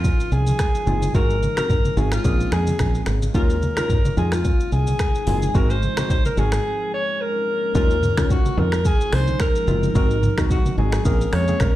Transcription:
Already playing: F3 G#3 D#4 F4
0.04 kick, low conga, shaker
0.20 shaker
0.32 C2 G#4, shaker
0.47 high conga, shaker
0.59 finger snap, kick, cross-stick, shaker
0.75 shaker
0.86 F#1 G#3 C4 D#4 F4, high conga, low conga, shaker
1.02 high conga, shaker
1.14 G#1 F#3 G#3 C4 D#4 F#4 A#4, kick, shaker
1.30 shaker
1.42 high conga, shaker
1.57 G#3 C4 D#4 F#4 A#4, finger snap, cross-stick, high conga, shaker
1.70 kick, mid tom, low conga, shaker
1.85 high conga, shaker
1.97 G#1 G#3 C4 D#4 F#4 G#4, high conga, low conga, shaker
2.12 F4, finger snap, cross-stick, shaker
2.24 A#1 C#3 A#3 C4 C#4 G#4, kick, low conga, shaker
2.40 shaker
2.52 F2 G#4, finger snap, cross-stick, shaker
2.67 high conga, shaker
2.79 A#1, finger snap, kick, cross-stick, shaker
2.95 shaker
3.06 G#1, finger snap, cross-stick, high conga, low conga, shaker
3.22 high conga, shaker
3.34 D#2 D#3 F#3 A#3 C#4 D#4 F4 F#4 A#4, kick, shaker
3.50 shaker
3.62 high conga, shaker
3.77 F#3 C#4 D#4 F4 A#4, finger snap, cross-stick, high conga, shaker
3.90 kick, mid tom, low conga, shaker
4.05 high conga, shaker
4.17 F2 F3 G#3 C4 D#4 F4 G#4, high conga, low conga, shaker
4.32 F4, finger snap, cross-stick, shaker
4.45 kick, low conga, shaker
4.60 shaker
4.72 C2 G#4, shaker
4.87 high conga, shaker
4.99 finger snap, kick, cross-stick, shaker
5.15 shaker
5.27 F#1 G#3 C4 D#4 F4, open hi-hat, high conga, low conga, shaker
5.42 high conga, shaker
5.54 G#1 F#3 G#3 C4 D#4 F#4 A#4, kick, shaker
5.70 C5, shaker
5.83 high conga, shaker
5.97 G#3 C4 D#4 F#4, finger snap, cross-stick, high conga, shaker
6.10 C5, kick, low conga, shaker
6.25 A#4, high conga, shaker
6.37 G#1 G#3 C4 D#4 F#4 G#4, high conga, low conga, shaker
6.52 finger snap, cross-stick, shaker
6.65 A#3 C#4
6.94 C#5
7.21 A#4
7.75 D#2 D#3 F#3 A#3 C#4 D#4 F4 F#4 A#4, kick, shaker
7.90 shaker
8.03 mid tom, high conga, shaker
8.17 F#3 C#4 D#4 F4, finger snap, kick, cross-stick, high conga, shaker
8.30 F#4, kick, low conga, shaker
8.46 high conga, shaker
8.57 F2 F3 G#3 C4 D#4 F4 A#4, high conga, low conga
8.72 finger snap, cross-stick, shaker
8.85 G#4, kick, shaker
9.01 shaker
9.12 C2 C5, finger snap, cross-stick, open hi-hat
9.27 high conga, shaker
9.40 A#4, finger snap, kick, cross-stick, shaker
9.55 shaker
9.67 F#1 G#3 C4 D#4 F4, high conga, low conga, shaker
9.83 high conga, shaker
9.95 G#1 F#3 G#3 C4 D#4 F#4 A#4, kick, shaker
10.11 shaker
10.23 mid tom, high conga, shaker
10.38 G#3 C4 D#4 F#4, finger snap, kick, cross-stick, high conga, shaker
10.50 F#4, kick, low conga, shaker
10.66 high conga, shaker
10.78 G#1 G#3 C4 D#4 F#4 G#4, high conga, low conga
10.92 finger snap, cross-stick, shaker
11.05 A#1 C#3 A#3 C4 C#4 G#4 A#4, kick, shaker
11.21 shaker
11.33 F2 C#5, finger snap, cross-stick, open hi-hat
11.48 A#3 C4 C#4 G#4, high conga, shaker
11.60 A#1 A#4, finger snap, kick, cross-stick, shaker

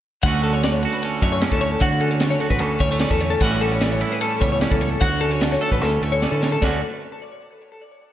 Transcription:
0.23 D2 D3 A3 C#4 F#5, kick, ride
0.28 F#4
0.43 C#4 A4, ride
0.53 C#5
0.63 D3 D5, snare, ride
0.73 C#5
0.83 F#4 A4, ride
0.93 B4
1.02 C#4 A4, ride
1.22 F#2 A2 A3 C#5, kick, ride
1.32 C#5
1.41 C#4 D5, snare, ride
1.51 D2 A4, kick
1.61 C#5, ride
1.72 A4
1.80 D2 D3 F#4 F#5, kick, ride
2.00 C#4 A4, ride
2.11 C#5
2.20 D3 D5, snare, ride
2.30 C#5, snare
2.40 F#4 A4, ride
2.50 A1 B4, kick, snare
2.59 D2 C#4 A4, ride
2.79 D2 A2 G3 C#5, kick, ride
2.91 A3 C#5
2.99 C#4 D5, snare, ride
3.10 E2 A4, kick
3.20 C#5, ride
3.30 A4
3.40 A1 A2 E3 G3 C#4 F#5, kick, ride
3.44 F#4
3.60 C#4 A4, ride
3.72 C#5
3.81 E3 D5, snare, ride
3.92 C#5
4.01 E4 A4, ride
4.12 B4
4.21 C#4 A4, ride
4.41 C#2 E2 G3 C#5, kick, ride
4.52 C#5
4.61 C#4 D5, snare, ride
4.71 C#2 A4, kick
4.81 C#5, ride
4.90 A4
5.00 D2 F#4 F#5, kick, ride
5.20 C#4 A4, ride
5.31 C#5
5.40 D3 D5, snare, ride
5.52 C#5, snare
5.61 A4, ride
5.72 A1 B4, kick, snare
5.81 D2 C#4 A4, snare
6.02 D2 A2 A3 C#5
6.12 C#5
6.22 C#4 D5, snare
6.31 D3 A4
6.42 C#5, snare
6.52 A4
6.62 D2 D3 A3 C#4 F#4 D5, kick, snare, crash

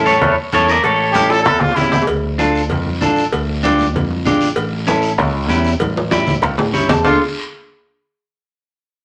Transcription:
Already playing: A1 C#4 E4 A4
0.06 A4 C#5, high conga, short guiro
0.21 E2, cowbell, low conga
0.52 E2 C#4 E4 A4 C#5, cowbell, high conga, short guiro
0.68 A#4 D5, short guiro
0.84 A1 A4 C#5, cowbell
1.12 C#4 E4 G4 A4, cowbell, high conga, short guiro
1.30 A4, high timbale, short guiro
1.40 A4, high timbale
1.45 E2, cowbell, low conga
1.60 F4, low conga, low timbale
1.71 E4, low timbale
1.76 A1 C#4 E4 G4, cowbell, low conga, short guiro
1.81 low timbale
1.92 low conga, low timbale, short guiro
2.02 low timbale
2.07 D2, cowbell
2.25 high conga
2.38 D4 F4 A4, high conga, short guiro
2.55 short guiro
2.70 F2, cowbell, high conga, low conga, long guiro
2.86 high conga
3.01 A1 D4 F4 A4, high conga, low conga, short guiro
3.16 short guiro
3.32 D2, cowbell
3.49 high conga
3.63 D4 F4 G4, high conga, short guiro
3.79 high conga, short guiro
3.94 F2, cowbell, high conga, low conga, long guiro
4.10 high conga
4.25 A1 D4 F4 G4, high conga, low conga, low timbale, short guiro
4.41 short guiro
4.56 A1, cowbell, long guiro
4.73 high conga
4.87 C#4 E4 A4, high conga, short guiro
5.02 short guiro
5.18 C#2, cowbell, high conga, low conga, long guiro
5.49 E2 C#4 E4 G4, high conga, short guiro
5.65 short guiro
5.80 A1, cowbell, high conga, long guiro
5.97 high conga
6.11 C#4 E4 G4, high conga, high timbale, short guiro
6.27 low conga, short guiro
6.42 C#2, cowbell, low conga, long guiro
6.58 A2, low conga, low timbale
6.72 G2 C#4 E4 G4 C#5, low conga, short guiro
6.88 E2 A5, low conga, low timbale, short guiro
7.04 D2 D4 F4 A4, low conga, low timbale, long guiro

